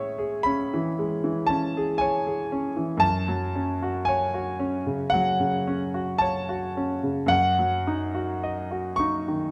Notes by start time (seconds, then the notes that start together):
Already playing: A2 G#3 C#4 G#4 C#5 E5
0.18 G#4
0.43 C#4 B5
0.74 E3
0.99 G#3
1.24 E3
1.47 C#4 A5
1.77 G#4
1.98 C#5 G#5
2.27 G#4
2.52 C#4
2.77 E3
2.97 F#2 A5
3.28 F#3
3.55 C#4
3.83 F#4
4.05 C#5 G#5
4.34 F#4
4.60 C#4
4.86 C#3
5.10 F#3 F#5
5.40 C#3
5.67 C#4
5.94 F#4
6.18 C#5 A5
6.49 F#4
6.77 C#4
7.03 C#3
7.26 F#2 F#5
7.59 F#3
7.87 D#4
8.15 F#4
8.44 D#5
8.71 F#4
8.96 D#4 C#6
9.28 D#3